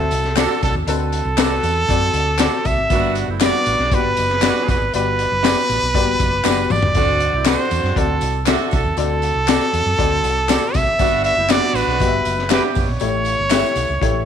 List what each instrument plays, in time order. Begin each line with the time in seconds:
Already playing: upright piano C4 F#4 A4 E5, trumpet A4
0.11 fingered electric bass C2, closed hi-hat, tambourine
0.24 snare
0.36 clean electric guitar C4 F#4 A4 D5, upright piano C4 F4 A4 D5, horn section D4 F#4 A4, trumpet A4, snare, clap, closed hi-hat, tambourine
0.43 upright piano F#4
0.62 fingered electric bass C2, trumpet A4, kick, snare, closed hi-hat, tambourine
0.74 fingered electric bass D#2
0.87 fingered electric bass D2, upright piano D3 C4 F#4 A4 B4, trumpet A4, closed hi-hat, tambourine
1.12 closed hi-hat, tambourine
1.25 fingered electric bass C2
1.37 clean electric guitar C4 F#4 A4 D5, upright piano C4 F#4 A4 B4, snare, clap, closed hi-hat, tambourine
1.63 fingered electric bass E2, closed hi-hat, tambourine
1.88 fingered electric bass F#2, upright piano C4 F#4 A4 D5, kick, closed hi-hat, tambourine
2.13 fingered electric bass D2, closed hi-hat, tambourine
2.39 clean electric guitar C4 F#4 A4 D5, upright piano C4 F#4 A4 D5, snare, clap, closed hi-hat, tambourine
2.65 fingered electric bass C2, trumpet E5, kick, closed hi-hat, tambourine
2.77 fingered electric bass G#1
2.90 fingered electric bass G1, upright piano G2 G3 A#3 F#4 D5, horn section B3 D4 F#4, kick, closed hi-hat, tambourine
2.97 upright piano B3
3.15 closed hi-hat, tambourine
3.28 fingered electric bass F#1, horn section A3 C4 E4
3.40 upright piano G3 B3 F#4 D5, horn section B3 D4 F#4, clean electric guitar D4 F#4 B4 D5, snare, clap, closed hi-hat, tambourine
3.45 trumpet D5
3.66 fingered electric bass A1, closed hi-hat, tambourine
3.79 fingered electric bass B1, snare
3.92 fingered electric bass G1, upright piano B3 F#4 G4 D5, trumpet B4, kick, closed hi-hat, tambourine
4.17 fingered electric bass F#1, closed hi-hat, tambourine
4.30 snare
4.42 upright piano G3 B3 F#4 D5, horn section B3 D4 F#4, clean electric guitar D4 F#4 B4 D5, snare, clap, closed hi-hat, tambourine
4.68 fingered electric bass F#1, trumpet B4, kick, snare, closed hi-hat, tambourine
4.80 fingered electric bass G#1
4.93 fingered electric bass G1, upright piano G2 B3 F#4 G4 D5, trumpet B4, closed hi-hat, tambourine
5.19 closed hi-hat, tambourine
5.31 fingered electric bass F#1
5.43 upright piano B3 F#4 G4 D5, clean electric guitar D4 F#4 B4 D5, snare, clap, closed hi-hat, tambourine
5.69 fingered electric bass A1, closed hi-hat, tambourine
5.82 fingered electric bass B1
5.94 fingered electric bass G1, upright piano A#3 F#4 G4 D5, kick, closed hi-hat, tambourine
6.01 upright piano B3
6.20 fingered electric bass F#1, kick, closed hi-hat, tambourine
6.44 fingered electric bass F#1, upright piano B3 F#4 G4 D5, clean electric guitar D4 F#4 B4 D5, snare, clap, tambourine
6.70 fingered electric bass G1, trumpet D5, mid tom, tambourine
6.82 floor tom
6.95 fingered electric bass D2, upright piano D3 C4 F#4 A4 D5, horn section C4 D4 F#4, kick, closed hi-hat, tambourine
7.20 closed hi-hat
7.33 fingered electric bass C2, horn section A3 C4 E4
7.45 clean electric guitar C4 F#4 A4 D5, horn section C4 D4 F#4, upright piano C4 F#4 A4 D5, trumpet C5, snare, clap, closed hi-hat, tambourine
7.71 fingered electric bass E2, closed hi-hat, tambourine
7.83 fingered electric bass F#2, snare
7.96 fingered electric bass D2, upright piano C4 F#4 A4 D5, trumpet A4, kick, closed hi-hat
8.21 fingered electric bass C2, closed hi-hat, tambourine
8.46 clean electric guitar C4 F#4 A4 D5, upright piano C4 F#4 A4 E5, horn section D4 F#4 A4, snare, clap, closed hi-hat, tambourine
8.71 fingered electric bass C2, trumpet A4, kick, closed hi-hat, tambourine
8.85 fingered electric bass D#2
8.97 fingered electric bass D2, upright piano D3 C4 F#4 A4 D5, trumpet A4, closed hi-hat, tambourine
9.22 closed hi-hat, tambourine
9.35 fingered electric bass C2
9.48 clean electric guitar C4 F#4 A4 D5, upright piano C4 F#4 A4 D5, snare, clap, closed hi-hat, tambourine
9.73 fingered electric bass E2, closed hi-hat, tambourine
9.86 fingered electric bass F#2
9.98 fingered electric bass D2, upright piano C4 F#4 A4 D5, kick, closed hi-hat
10.23 fingered electric bass C2, closed hi-hat, tambourine
10.48 upright piano C4 F#4 A4 D5, clean electric guitar C4 F#4 A4 D5, snare, clap, closed hi-hat, tambourine
10.74 fingered electric bass C2, trumpet E5, kick, snare, closed hi-hat, tambourine
10.85 fingered electric bass G#1
10.99 fingered electric bass G1, upright piano G2 G3 B3 F#4 D5, horn section B3 D4 F#4, kick, closed hi-hat, tambourine
11.24 trumpet E5, closed hi-hat, tambourine
11.36 fingered electric bass F#1, horn section A3 C4 E4
11.49 upright piano G3 B3 F#4 D5, horn section B3 D4 F#4, clean electric guitar D4 F#4 B4 D5, trumpet D5, snare, clap, closed hi-hat, tambourine
11.73 fingered electric bass A1, trumpet B4, closed hi-hat, tambourine
11.87 fingered electric bass B1, snare
11.99 fingered electric bass G1, upright piano B3 F#4 G4 D#5, kick, closed hi-hat, tambourine
12.07 upright piano E5
12.25 fingered electric bass F#1, closed hi-hat, tambourine
12.39 snare
12.50 upright piano B3 G4 E5 F#5, horn section B3 D4 G4, clean electric guitar D4 F#4 B4 D5, trumpet B4, snare, clap, closed hi-hat, tambourine
12.75 fingered electric bass F#1, trumpet C#5, kick, open hi-hat, tambourine
12.89 fingered electric bass A#1
13.00 fingered electric bass A1, upright piano A2 A3 E4 G4 C#5, closed hi-hat, tambourine
13.25 closed hi-hat, tambourine
13.39 fingered electric bass G1
13.50 upright piano A3 E4 G4 B4, clean electric guitar E4 G4 C#5 E5, snare, clap, closed hi-hat, tambourine
13.57 upright piano C#5
13.76 fingered electric bass B1, closed hi-hat, tambourine
13.89 fingered electric bass C#2
14.01 fingered electric bass A1, upright piano A3 E4 G4 C#5, kick, closed hi-hat